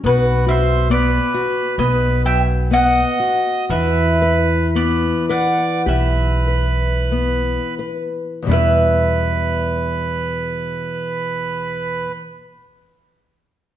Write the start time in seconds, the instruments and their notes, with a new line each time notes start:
0.04 upright bass B1, nylon-string guitar B3, accordion F#4, mandolin B4
0.46 nylon-string guitar F#4, accordion C5, mandolin E5
0.90 nylon-string guitar B3, accordion B4, mandolin D5
1.34 nylon-string guitar F#4
1.78 upright bass B1, nylon-string guitar B3, accordion B4, mandolin D#5
2.25 nylon-string guitar F#3, accordion E5, mandolin G5
2.71 nylon-string guitar B3, accordion D#5, mandolin F#5
3.20 nylon-string guitar F#4
3.70 upright bass E2, nylon-string guitar E3, accordion B4, mandolin E5
4.22 nylon-string guitar B4
4.75 nylon-string guitar B3, accordion B4, mandolin D5
5.29 nylon-string guitar B4, accordion D5, mandolin F#5
5.86 upright bass B1, nylon-string guitar G4, accordion B4, mandolin E5
6.48 nylon-string guitar B4
7.12 nylon-string guitar B3
7.79 nylon-string guitar B4
8.42 nylon-string guitar E2 B2
8.47 upright bass E2, nylon-string guitar G3 D4, accordion B4
8.51 nylon-string guitar E4 B4, mandolin E5